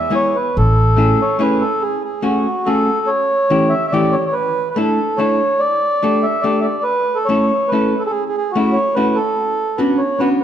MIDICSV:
0, 0, Header, 1, 4, 480
1, 0, Start_track
1, 0, Key_signature, 3, "minor"
1, 0, Tempo, 419287
1, 648, Time_signature, 3, 2, 24, 8
1, 11951, End_track
2, 0, Start_track
2, 0, Title_t, "Accordion"
2, 0, Program_c, 0, 21
2, 0, Note_on_c, 0, 76, 96
2, 162, Note_off_c, 0, 76, 0
2, 172, Note_on_c, 0, 73, 97
2, 405, Note_on_c, 0, 71, 78
2, 424, Note_off_c, 0, 73, 0
2, 650, Note_off_c, 0, 71, 0
2, 656, Note_on_c, 0, 69, 88
2, 1393, Note_on_c, 0, 73, 81
2, 1571, Note_off_c, 0, 69, 0
2, 1612, Note_on_c, 0, 71, 82
2, 1627, Note_off_c, 0, 73, 0
2, 1840, Note_on_c, 0, 69, 86
2, 1871, Note_off_c, 0, 71, 0
2, 2078, Note_on_c, 0, 68, 87
2, 2093, Note_off_c, 0, 69, 0
2, 2319, Note_off_c, 0, 68, 0
2, 2336, Note_on_c, 0, 68, 68
2, 2559, Note_on_c, 0, 66, 64
2, 2584, Note_off_c, 0, 68, 0
2, 3045, Note_on_c, 0, 69, 89
2, 3069, Note_off_c, 0, 66, 0
2, 3510, Note_on_c, 0, 73, 100
2, 3552, Note_off_c, 0, 69, 0
2, 4232, Note_on_c, 0, 76, 92
2, 4279, Note_off_c, 0, 73, 0
2, 4419, Note_off_c, 0, 76, 0
2, 4436, Note_on_c, 0, 76, 69
2, 4482, Note_on_c, 0, 74, 94
2, 4501, Note_off_c, 0, 76, 0
2, 4718, Note_on_c, 0, 73, 91
2, 4750, Note_off_c, 0, 74, 0
2, 4865, Note_off_c, 0, 73, 0
2, 4882, Note_on_c, 0, 73, 54
2, 4952, Note_on_c, 0, 71, 103
2, 4973, Note_off_c, 0, 73, 0
2, 5369, Note_off_c, 0, 71, 0
2, 5386, Note_on_c, 0, 71, 62
2, 5447, Note_on_c, 0, 69, 82
2, 5463, Note_off_c, 0, 71, 0
2, 5919, Note_on_c, 0, 73, 97
2, 5948, Note_off_c, 0, 69, 0
2, 6405, Note_on_c, 0, 74, 108
2, 6423, Note_off_c, 0, 73, 0
2, 7127, Note_on_c, 0, 76, 91
2, 7162, Note_off_c, 0, 74, 0
2, 7340, Note_on_c, 0, 74, 90
2, 7377, Note_off_c, 0, 76, 0
2, 7552, Note_off_c, 0, 74, 0
2, 7566, Note_on_c, 0, 76, 60
2, 7590, Note_on_c, 0, 74, 72
2, 7628, Note_off_c, 0, 76, 0
2, 7821, Note_on_c, 0, 71, 102
2, 7825, Note_off_c, 0, 74, 0
2, 8185, Note_on_c, 0, 69, 80
2, 8219, Note_off_c, 0, 71, 0
2, 8302, Note_on_c, 0, 73, 86
2, 8327, Note_off_c, 0, 69, 0
2, 8794, Note_on_c, 0, 71, 82
2, 8820, Note_off_c, 0, 73, 0
2, 9152, Note_on_c, 0, 69, 63
2, 9185, Note_off_c, 0, 71, 0
2, 9197, Note_off_c, 0, 69, 0
2, 9221, Note_on_c, 0, 68, 61
2, 9226, Note_on_c, 0, 69, 68
2, 9249, Note_off_c, 0, 68, 0
2, 9273, Note_on_c, 0, 68, 95
2, 9290, Note_off_c, 0, 69, 0
2, 9437, Note_off_c, 0, 68, 0
2, 9482, Note_on_c, 0, 68, 66
2, 9570, Note_off_c, 0, 68, 0
2, 9587, Note_on_c, 0, 68, 98
2, 9751, Note_on_c, 0, 66, 71
2, 9752, Note_off_c, 0, 68, 0
2, 9987, Note_on_c, 0, 73, 93
2, 10021, Note_off_c, 0, 66, 0
2, 10241, Note_on_c, 0, 71, 92
2, 10247, Note_off_c, 0, 73, 0
2, 10476, Note_on_c, 0, 69, 91
2, 10505, Note_off_c, 0, 71, 0
2, 11187, Note_on_c, 0, 71, 66
2, 11221, Note_off_c, 0, 69, 0
2, 11420, Note_on_c, 0, 73, 73
2, 11455, Note_off_c, 0, 71, 0
2, 11661, Note_on_c, 0, 71, 88
2, 11679, Note_off_c, 0, 73, 0
2, 11779, Note_off_c, 0, 71, 0
2, 11911, Note_on_c, 0, 71, 71
2, 11951, Note_off_c, 0, 71, 0
2, 11951, End_track
3, 0, Start_track
3, 0, Title_t, "Hollow-body jazz guitar"
3, 0, Program_c, 1, 26
3, 119, Note_on_c, 1, 56, 71
3, 127, Note_on_c, 1, 64, 54
3, 131, Note_on_c, 1, 59, 51
3, 140, Note_on_c, 1, 68, 64
3, 391, Note_off_c, 1, 56, 0
3, 395, Note_off_c, 1, 64, 0
3, 399, Note_off_c, 1, 59, 0
3, 399, Note_off_c, 1, 68, 0
3, 1102, Note_on_c, 1, 57, 59
3, 1111, Note_on_c, 1, 61, 52
3, 1120, Note_on_c, 1, 64, 60
3, 1128, Note_on_c, 1, 68, 59
3, 1367, Note_off_c, 1, 57, 0
3, 1369, Note_off_c, 1, 61, 0
3, 1369, Note_off_c, 1, 64, 0
3, 1369, Note_off_c, 1, 68, 0
3, 1589, Note_on_c, 1, 57, 61
3, 1599, Note_on_c, 1, 64, 66
3, 1601, Note_on_c, 1, 61, 57
3, 1608, Note_on_c, 1, 68, 70
3, 1853, Note_off_c, 1, 57, 0
3, 1854, Note_off_c, 1, 61, 0
3, 1857, Note_off_c, 1, 64, 0
3, 1859, Note_off_c, 1, 68, 0
3, 2546, Note_on_c, 1, 57, 57
3, 2551, Note_on_c, 1, 61, 56
3, 2555, Note_on_c, 1, 66, 57
3, 2561, Note_on_c, 1, 68, 53
3, 2814, Note_off_c, 1, 57, 0
3, 2817, Note_off_c, 1, 61, 0
3, 2819, Note_off_c, 1, 66, 0
3, 2819, Note_off_c, 1, 68, 0
3, 3050, Note_on_c, 1, 57, 62
3, 3054, Note_on_c, 1, 61, 46
3, 3055, Note_on_c, 1, 66, 53
3, 3064, Note_on_c, 1, 68, 50
3, 3307, Note_off_c, 1, 61, 0
3, 3309, Note_off_c, 1, 57, 0
3, 3310, Note_off_c, 1, 66, 0
3, 3312, Note_off_c, 1, 68, 0
3, 4007, Note_on_c, 1, 52, 61
3, 4012, Note_on_c, 1, 61, 57
3, 4016, Note_on_c, 1, 57, 49
3, 4021, Note_on_c, 1, 64, 55
3, 4021, Note_on_c, 1, 67, 61
3, 4266, Note_off_c, 1, 52, 0
3, 4268, Note_off_c, 1, 57, 0
3, 4269, Note_off_c, 1, 61, 0
3, 4270, Note_off_c, 1, 67, 0
3, 4272, Note_off_c, 1, 64, 0
3, 4493, Note_on_c, 1, 52, 55
3, 4500, Note_on_c, 1, 57, 53
3, 4505, Note_on_c, 1, 61, 52
3, 4508, Note_on_c, 1, 67, 74
3, 4514, Note_on_c, 1, 64, 50
3, 4747, Note_off_c, 1, 52, 0
3, 4752, Note_off_c, 1, 61, 0
3, 4753, Note_off_c, 1, 57, 0
3, 4753, Note_off_c, 1, 64, 0
3, 4755, Note_off_c, 1, 67, 0
3, 5449, Note_on_c, 1, 57, 74
3, 5460, Note_on_c, 1, 62, 52
3, 5466, Note_on_c, 1, 64, 50
3, 5472, Note_on_c, 1, 69, 62
3, 5705, Note_off_c, 1, 57, 0
3, 5707, Note_off_c, 1, 62, 0
3, 5712, Note_off_c, 1, 64, 0
3, 5712, Note_off_c, 1, 69, 0
3, 5935, Note_on_c, 1, 57, 58
3, 5944, Note_on_c, 1, 62, 43
3, 5944, Note_on_c, 1, 64, 50
3, 5951, Note_on_c, 1, 69, 64
3, 6185, Note_off_c, 1, 57, 0
3, 6187, Note_off_c, 1, 62, 0
3, 6189, Note_off_c, 1, 64, 0
3, 6193, Note_off_c, 1, 69, 0
3, 6897, Note_on_c, 1, 62, 50
3, 6903, Note_on_c, 1, 57, 66
3, 6908, Note_on_c, 1, 67, 49
3, 6912, Note_on_c, 1, 69, 69
3, 7146, Note_off_c, 1, 62, 0
3, 7150, Note_off_c, 1, 57, 0
3, 7150, Note_off_c, 1, 67, 0
3, 7154, Note_off_c, 1, 69, 0
3, 7370, Note_on_c, 1, 57, 60
3, 7377, Note_on_c, 1, 62, 39
3, 7377, Note_on_c, 1, 67, 56
3, 7386, Note_on_c, 1, 69, 50
3, 7624, Note_off_c, 1, 57, 0
3, 7625, Note_off_c, 1, 62, 0
3, 7628, Note_off_c, 1, 67, 0
3, 7630, Note_off_c, 1, 69, 0
3, 8342, Note_on_c, 1, 57, 66
3, 8346, Note_on_c, 1, 61, 50
3, 8354, Note_on_c, 1, 69, 68
3, 8355, Note_on_c, 1, 64, 49
3, 8591, Note_off_c, 1, 57, 0
3, 8594, Note_off_c, 1, 61, 0
3, 8596, Note_off_c, 1, 64, 0
3, 8597, Note_off_c, 1, 69, 0
3, 8839, Note_on_c, 1, 57, 66
3, 8844, Note_on_c, 1, 61, 49
3, 8850, Note_on_c, 1, 64, 54
3, 8854, Note_on_c, 1, 69, 54
3, 9082, Note_off_c, 1, 57, 0
3, 9082, Note_off_c, 1, 61, 0
3, 9083, Note_off_c, 1, 69, 0
3, 9086, Note_off_c, 1, 64, 0
3, 9793, Note_on_c, 1, 57, 67
3, 9801, Note_on_c, 1, 61, 43
3, 9805, Note_on_c, 1, 66, 57
3, 9811, Note_on_c, 1, 64, 51
3, 10035, Note_off_c, 1, 57, 0
3, 10035, Note_off_c, 1, 61, 0
3, 10041, Note_off_c, 1, 66, 0
3, 10042, Note_off_c, 1, 64, 0
3, 10263, Note_on_c, 1, 57, 62
3, 10267, Note_on_c, 1, 61, 50
3, 10272, Note_on_c, 1, 66, 64
3, 10277, Note_on_c, 1, 64, 46
3, 10508, Note_off_c, 1, 57, 0
3, 10511, Note_off_c, 1, 64, 0
3, 10512, Note_off_c, 1, 61, 0
3, 10512, Note_off_c, 1, 66, 0
3, 11200, Note_on_c, 1, 59, 59
3, 11202, Note_on_c, 1, 61, 53
3, 11210, Note_on_c, 1, 66, 67
3, 11213, Note_on_c, 1, 62, 50
3, 11453, Note_off_c, 1, 59, 0
3, 11455, Note_off_c, 1, 61, 0
3, 11458, Note_off_c, 1, 62, 0
3, 11458, Note_off_c, 1, 66, 0
3, 11673, Note_on_c, 1, 61, 48
3, 11682, Note_on_c, 1, 59, 61
3, 11685, Note_on_c, 1, 62, 52
3, 11690, Note_on_c, 1, 66, 55
3, 11930, Note_off_c, 1, 61, 0
3, 11931, Note_off_c, 1, 59, 0
3, 11934, Note_off_c, 1, 62, 0
3, 11937, Note_off_c, 1, 66, 0
3, 11951, End_track
4, 0, Start_track
4, 0, Title_t, "Upright bass"
4, 0, Program_c, 2, 32
4, 651, Note_on_c, 2, 33, 83
4, 1277, Note_off_c, 2, 33, 0
4, 11951, End_track
0, 0, End_of_file